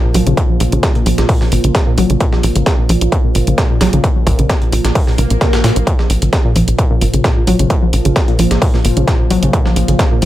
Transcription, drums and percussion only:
0.14 closed hi-hat medium
0.14 open hi-hat medium
0.27 closed hi-hat medium
0.37 kick loud
0.37 closed hi-hat medium
0.60 closed hi-hat medium
0.60 open hi-hat loud
0.72 closed hi-hat medium
0.83 kick loud
0.83 snare loud
0.83 closed hi-hat medium
0.95 closed hi-hat soft
1.06 closed hi-hat medium
1.06 open hi-hat medium
1.18 snare medium
1.18 closed hi-hat medium
1.29 kick loud
1.29 closed hi-hat medium
1.29 open hi-hat medium
1.41 snare soft
1.52 closed hi-hat medium
1.52 open hi-hat loud
1.64 closed hi-hat medium
1.75 kick loud
1.75 snare loud
1.75 closed hi-hat medium
1.98 closed hi-hat medium
1.98 open hi-hat medium
2.10 closed hi-hat medium
2.20 kick loud
2.20 closed hi-hat medium
2.33 snare soft
2.43 closed hi-hat medium
2.43 open hi-hat medium
2.55 closed hi-hat soft
2.55 closed hi-hat medium
2.66 kick loud
2.66 snare loud
2.66 closed hi-hat medium
2.89 closed hi-hat medium
2.89 open hi-hat medium
3.01 closed hi-hat medium
3.12 kick loud
3.12 closed hi-hat medium
3.35 closed hi-hat medium
3.35 open hi-hat loud
3.47 closed hi-hat medium
3.58 kick loud
3.58 snare loud
3.58 closed hi-hat medium
3.81 snare loud
3.81 closed hi-hat medium
3.81 open hi-hat medium
3.93 closed hi-hat medium
4.04 kick loud
4.04 closed hi-hat medium
4.27 kick medium
4.27 closed hi-hat medium
4.27 open hi-hat medium
4.39 closed hi-hat medium
4.49 kick loud
4.49 snare loud
4.49 closed hi-hat medium
4.62 closed hi-hat soft
4.72 closed hi-hat medium
4.72 open hi-hat medium
4.85 snare medium
4.85 closed hi-hat medium
4.95 kick loud
4.95 closed hi-hat medium
4.95 open hi-hat medium
5.07 snare soft
5.18 closed hi-hat medium
5.18 open hi-hat medium
5.30 closed hi-hat medium
5.41 kick loud
5.41 snare loud
5.41 closed hi-hat medium
5.53 snare loud
5.53 closed hi-hat medium
5.64 snare loud
5.64 closed hi-hat medium
5.64 open hi-hat medium
5.76 closed hi-hat medium
5.87 kick loud
5.87 closed hi-hat medium
5.99 snare soft
6.10 closed hi-hat medium
6.10 open hi-hat loud
6.22 closed hi-hat soft
6.22 closed hi-hat medium
6.33 kick loud
6.33 snare loud
6.33 closed hi-hat medium
6.56 closed hi-hat medium
6.56 open hi-hat medium
6.68 closed hi-hat medium
6.78 kick loud
6.78 closed hi-hat medium
7.01 closed hi-hat medium
7.01 open hi-hat loud
7.14 closed hi-hat medium
7.24 kick loud
7.24 snare loud
7.24 closed hi-hat medium
7.47 closed hi-hat medium
7.47 open hi-hat loud
7.59 closed hi-hat medium
7.70 kick loud
7.70 closed hi-hat medium
7.93 closed hi-hat medium
7.93 open hi-hat loud
8.05 closed hi-hat medium
8.16 kick loud
8.16 snare loud
8.16 closed hi-hat medium
8.28 closed hi-hat soft
8.39 closed hi-hat medium
8.39 open hi-hat medium
8.51 snare medium
8.51 closed hi-hat medium
8.62 kick loud
8.62 closed hi-hat medium
8.62 open hi-hat medium
8.74 snare soft
8.85 closed hi-hat medium
8.85 open hi-hat loud
8.97 closed hi-hat medium
9.08 kick loud
9.08 snare loud
9.08 closed hi-hat medium
9.30 closed hi-hat medium
9.30 open hi-hat medium
9.43 closed hi-hat medium
9.53 kick loud
9.53 closed hi-hat medium
9.66 snare medium
9.76 closed hi-hat medium
9.76 open hi-hat loud
9.88 closed hi-hat medium
9.88 closed hi-hat soft
9.99 kick loud
9.99 snare loud
9.99 closed hi-hat medium
10.22 closed hi-hat medium
10.22 open hi-hat medium

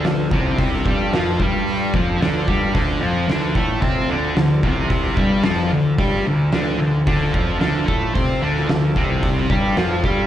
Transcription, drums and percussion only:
0.04 snare loud
0.04 open hi-hat medium
0.31 kick loud
0.58 kick loud
0.58 open hi-hat medium
0.86 kick loud
1.13 snare loud
1.13 open hi-hat medium
1.40 kick loud
1.67 open hi-hat medium
1.94 kick loud
2.22 snare loud
2.22 open hi-hat medium
2.48 kick loud
2.75 kick loud
2.75 open hi-hat medium
3.29 snare loud
3.29 open hi-hat medium
3.55 kick loud
3.82 kick loud
3.82 open hi-hat medium
4.36 snare loud
4.36 open hi-hat medium
4.63 kick loud
4.90 kick loud
4.90 open hi-hat medium
5.17 kick loud
5.43 snare loud
5.43 open hi-hat medium
5.98 kick loud
5.98 open hi-hat medium
6.52 snare loud
6.52 open hi-hat medium
7.07 kick loud
7.07 open hi-hat medium
7.34 kick loud
7.61 snare loud
7.61 open hi-hat medium
7.88 kick medium
8.15 kick loud
8.15 open hi-hat medium
8.57 snare soft
8.69 snare loud
8.69 open hi-hat medium
8.96 kick medium
9.23 kick loud
9.23 open hi-hat medium
9.50 kick loud
9.77 snare loud
9.77 open hi-hat medium
10.04 kick loud

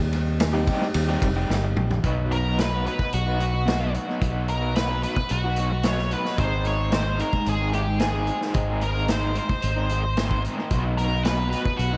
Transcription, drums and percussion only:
0.13 ride medium
0.40 snare loud
0.40 ride medium
0.67 kick medium
0.67 ride medium
0.94 ride medium
1.22 kick medium
1.22 ride medium
1.50 snare medium
1.77 mid tom medium
1.90 floor tom medium
2.04 kick medium
2.04 closed hi-hat medium
2.32 closed hi-hat soft
2.58 snare medium
2.58 closed hi-hat medium
2.86 closed hi-hat soft
2.99 kick medium
3.13 closed hi-hat medium
3.40 closed hi-hat medium
3.68 snare medium
3.68 closed hi-hat medium
3.94 closed hi-hat soft
4.22 kick medium
4.22 closed hi-hat medium
4.48 closed hi-hat medium
4.76 snare medium
4.76 closed hi-hat medium
5.03 closed hi-hat medium
5.16 kick medium
5.29 closed hi-hat medium
5.56 closed hi-hat medium
5.83 snare medium
5.83 closed hi-hat medium
5.98 snare soft
6.11 closed hi-hat soft
6.25 snare soft
6.38 kick medium
6.38 closed hi-hat medium
6.65 closed hi-hat medium
6.92 snare medium
6.92 closed hi-hat medium
7.19 closed hi-hat soft
7.33 kick medium
7.46 closed hi-hat medium
7.73 closed hi-hat medium
8.00 snare medium
8.00 closed hi-hat medium
8.27 closed hi-hat soft
8.41 snare soft
8.54 kick medium
8.54 closed hi-hat medium
8.81 closed hi-hat soft
9.08 snare medium
9.08 closed hi-hat medium
9.35 closed hi-hat medium
9.49 kick medium
9.62 closed hi-hat medium
9.89 closed hi-hat medium
10.17 snare medium
10.17 closed hi-hat medium
10.31 kick medium
10.44 closed hi-hat soft
10.70 kick medium
10.70 closed hi-hat medium
10.98 closed hi-hat medium
11.25 snare medium
11.25 closed hi-hat medium
11.52 closed hi-hat medium
11.65 kick medium
11.79 closed hi-hat medium

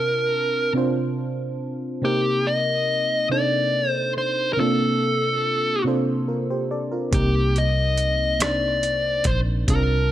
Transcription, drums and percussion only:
7.13 kick medium
7.13 closed hi-hat medium
7.56 closed hi-hat soft
7.97 closed hi-hat soft
8.40 cross-stick medium
8.40 closed hi-hat medium
8.83 closed hi-hat soft
9.24 kick medium
9.24 closed hi-hat soft
9.68 kick medium
9.68 closed hi-hat medium

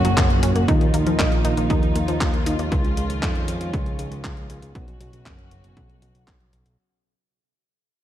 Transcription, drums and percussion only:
0.05 closed hi-hat medium
0.17 kick loud
0.17 clap loud
0.17 closed hi-hat medium
0.30 closed hi-hat soft
0.43 closed hi-hat medium
0.56 closed hi-hat medium
0.68 kick loud
0.68 closed hi-hat medium
0.81 closed hi-hat soft
0.94 closed hi-hat medium
1.07 closed hi-hat medium
1.19 kick loud
1.19 clap loud
1.19 closed hi-hat soft
1.32 closed hi-hat soft
1.45 closed hi-hat medium
1.57 closed hi-hat medium
1.70 kick loud
1.70 closed hi-hat medium
1.83 closed hi-hat soft
1.96 closed hi-hat medium
2.08 closed hi-hat medium
2.21 kick loud
2.21 clap loud
2.21 closed hi-hat medium
2.34 closed hi-hat soft
2.46 closed hi-hat medium
2.59 closed hi-hat soft
2.72 kick loud
2.72 closed hi-hat soft
2.85 closed hi-hat soft
2.97 closed hi-hat medium
3.10 closed hi-hat medium
3.23 kick loud
3.23 clap loud
3.23 closed hi-hat soft
3.35 closed hi-hat soft
3.48 closed hi-hat medium
3.61 closed hi-hat soft
3.73 kick loud
3.73 closed hi-hat soft
3.86 closed hi-hat soft
3.99 closed hi-hat medium
4.12 closed hi-hat soft
4.24 kick loud
4.24 clap loud
4.24 closed hi-hat soft
4.37 closed hi-hat soft
4.50 closed hi-hat medium
4.62 closed hi-hat soft
4.75 kick loud
4.75 closed hi-hat soft
4.88 closed hi-hat soft
5.01 closed hi-hat medium
5.13 closed hi-hat soft
5.26 kick loud
5.26 clap loud
5.26 closed hi-hat soft
5.39 closed hi-hat soft
5.51 closed hi-hat medium
5.64 closed hi-hat soft
5.77 kick loud
5.77 closed hi-hat soft
5.90 closed hi-hat soft
6.02 closed hi-hat medium
6.15 closed hi-hat soft
6.28 kick loud
6.28 clap loud
6.28 closed hi-hat soft
6.40 closed hi-hat soft
6.53 closed hi-hat medium
6.66 closed hi-hat soft

